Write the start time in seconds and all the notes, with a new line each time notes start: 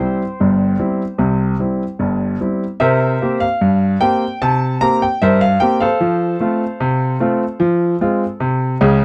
Already playing: C5 G5 C6
0.00 G3 C4 E4
0.40 G1 G2
0.79 G3 C4 E4
1.18 C2 C3
1.59 G3 C4 E4
1.99 G1 G2
2.41 G3 C4 E4
2.80 C3 A#4 C5 E5
3.22 A#3 C4 G4
3.40 F5
3.61 G2
4.01 A#3 C4 G4 G5
4.42 C3 A5
4.81 A#3 C4 G4 A#5
5.02 G5
5.22 G2 A#4 C5 E5
5.41 F5
5.60 A#3 C4 G4 G5
5.80 A4 C5 F5
6.00 F3
6.40 A3 C4 F4
6.80 C3
7.20 A3 C4 F4
7.60 F3
8.01 G#3 C4 F4
8.40 C3
8.81 C#2 C#3